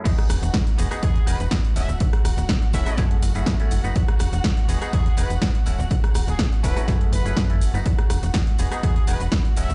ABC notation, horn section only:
X:1
M:4/4
L:1/16
Q:1/4=123
K:E
V:1 name="Horn section"
z8 G2 B z3 e z | z6 e2 z8 | z8 G2 B z4 z | z3 G G z B z3 B3 z3 |
z8 G2 B z3 e z |]